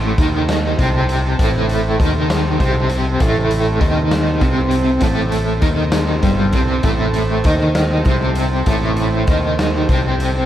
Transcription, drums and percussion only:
0.18 kick loud
0.18 closed hi-hat medium
0.49 snare medium
0.49 closed hi-hat medium
0.79 kick loud
0.79 closed hi-hat medium
1.09 closed hi-hat medium
1.39 kick loud
1.39 closed hi-hat medium
1.69 closed hi-hat medium
2.00 kick loud
2.00 closed hi-hat medium
2.30 snare loud
2.30 closed hi-hat medium
2.60 kick loud
2.60 closed hi-hat medium
2.89 closed hi-hat medium
3.20 kick loud
3.20 closed hi-hat medium
3.51 closed hi-hat medium
3.81 kick loud
3.81 closed hi-hat medium
4.11 snare loud
4.11 closed hi-hat medium
4.41 kick loud
4.41 closed hi-hat medium
4.71 closed hi-hat medium
5.01 kick loud
5.01 closed hi-hat medium
5.32 closed hi-hat medium
5.62 kick loud
5.62 closed hi-hat medium
5.92 snare loud
5.92 closed hi-hat medium
6.23 kick loud
6.23 closed hi-hat medium
6.53 kick medium
6.53 closed hi-hat medium
6.83 kick loud
6.83 closed hi-hat medium
7.14 closed hi-hat medium
7.44 kick loud
7.44 closed hi-hat medium
7.75 snare loud
7.75 closed hi-hat medium
8.05 kick loud
8.05 closed hi-hat medium
8.35 closed hi-hat medium
8.66 kick loud
8.66 closed hi-hat medium
8.97 closed hi-hat medium
9.27 kick loud
9.27 closed hi-hat medium
9.59 snare loud
9.59 closed hi-hat medium
9.89 kick loud
9.89 closed hi-hat medium
10.20 closed hi-hat medium

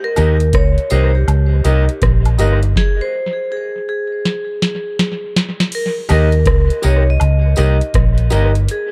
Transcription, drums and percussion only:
0.16 closed hi-hat medium
0.16 tambourine soft
0.16 high woodblock medium
0.40 closed hi-hat medium
0.53 kick loud
0.53 cross-stick loud
0.53 closed hi-hat medium
0.78 closed hi-hat medium
0.90 closed hi-hat medium
0.90 tambourine medium
1.28 closed hi-hat medium
1.28 high woodblock medium
1.64 closed hi-hat medium
1.64 tambourine medium
1.89 closed hi-hat soft
2.02 kick loud
2.02 cross-stick loud
2.02 closed hi-hat medium
2.25 closed hi-hat medium
2.25 high woodblock medium
2.39 closed hi-hat medium
2.39 tambourine medium
2.63 closed hi-hat soft
2.76 kick medium
2.76 snare medium
4.25 snare medium
4.62 snare medium
4.99 snare medium
5.36 snare loud
5.60 snare medium
5.72 closed hi-hat loud
5.72 crash medium
6.09 closed hi-hat medium
6.09 tambourine soft
6.09 high woodblock medium
6.32 closed hi-hat medium
6.46 kick loud
6.46 cross-stick loud
6.46 closed hi-hat medium
6.70 closed hi-hat medium
6.83 closed hi-hat medium
6.83 tambourine medium
7.20 closed hi-hat medium
7.20 high woodblock medium
7.56 closed hi-hat medium
7.56 tambourine medium
7.81 closed hi-hat soft
7.94 kick loud
7.94 cross-stick loud
7.94 closed hi-hat medium
8.18 closed hi-hat medium
8.30 closed hi-hat medium
8.30 tambourine medium
8.55 closed hi-hat medium
8.69 closed hi-hat loud

